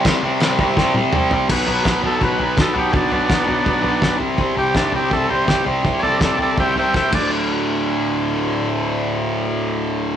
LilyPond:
<<
  \new Staff \with { instrumentName = "Transistor combo organ" } { \time 4/4 \key d \mixolydian \tempo 4 = 165 r1 | b'4. a'8 b'4 a'8 <fis' g'>8 | <cis' d'>8 <b d'>2. r8 | r8 g'8 d'8 g'8 a'8 c''8 g'8 r8 |
r8 <a' cis'' d''>8 <a' d''>8 <a' d''>8 <e'' g''>8 <e'' g''>8 <e'' g''>8 d''8 | r1 | r1 | }
  \new Staff \with { instrumentName = "Distorted electric guitar" } { \clef bass \time 4/4 \key d \mixolydian <c g c'>8 <c g c'>8 <c g c'>8 <c g c'>8 <c g c'>8 <c g c'>8 <c g c'>8 <c g c'>8 | <b, fis b>8 <b, fis b>8 <b, fis b>8 <b, fis b>8 <b, fis b>8 <b, fis b>8 <b, fis b>8 <b, fis b>8 | <b, fis b>8 <b, fis b>8 <b, fis b>8 <b, fis b>8 <b, fis b>8 <b, fis b>8 <b, fis b>8 <c g c'>8 | <c g c'>8 <c g c'>8 <c g c'>8 <c g c'>8 <c g c'>8 <c g c'>8 <c g c'>8 <c g c'>8 |
<c g c'>8 <c g c'>8 <c g c'>8 <c g c'>8 <c g c'>8 <c g c'>8 <c g c'>8 <d, a, d>8~ | <d, a, d>1~ | <d, a, d>1 | }
  \new DrumStaff \with { instrumentName = "Drums" } \drummode { \time 4/4 <cymc bd sn>4 <cymc sn>8 bd8 <bd sn>8 tommh8 toml8 tomfh8 | <cymc bd tomfh>8 tomfh8 <bd sn tomfh>8 tomfh8 <bd tomfh>8 tomfh8 <bd sn tomfh>8 tomfh8 | <bd tomfh>8 tomfh8 <bd sn tomfh>8 tomfh8 <bd tomfh>8 tomfh8 <bd sn tomfh>8 tomfh8 | <bd tomfh>8 tomfh8 <bd sn tomfh>8 tomfh8 <bd tomfh>8 tomfh8 <bd sn tomfh>8 tomfh8 |
<bd tomfh>8 tomfh8 <bd sn tomfh>8 tomfh8 <bd tomfh>8 tomfh8 <bd sn>8 <cymc bd>8 | r4 r4 r4 r4 | r4 r4 r4 r4 | }
>>